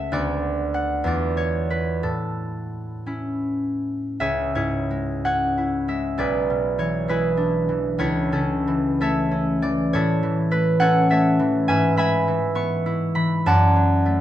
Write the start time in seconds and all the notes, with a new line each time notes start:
Already playing: C#2 A3 A4 E5 F#5
0.12 D2 B3 F#4 D5
0.74 F#5
1.04 E2 B3 F4 D5
1.37 C#5
1.70 B4
2.03 A2 A4
3.06 C#4 E4
4.20 C#2 G#4 C#5 E5
4.55 G#2 E4 G#4 C#5
4.91 G#3
5.25 C#4 C#5 F#5
5.57 E4
5.88 G#3 E5
6.18 B1 G#4 B4 D5
6.50 B2
6.78 E3 C#5
7.08 G#3 E4 G#4 B4
7.37 D4
7.69 E3
7.98 C#2 E4 A4 C#5
8.32 C#3 C#4 E4 A4
8.67 E3
9.01 A3 A4 C#5 E5
9.31 C#4
9.62 E3 D5
9.93 A2 E4 A4 C#5
10.23 E3
10.51 A3 B4
10.80 C#4 A4 C#5 F#5
11.10 A3 A4 C#5 E5
11.39 E3
11.68 G#2 B4 E5 G#5
11.97 G#3 E5 G#5 B5
12.28 E3
12.55 B3 C#6
12.86 E4
13.15 E3 B5
13.46 F#2 D5 F#5 A5
13.76 F#3
14.06 A3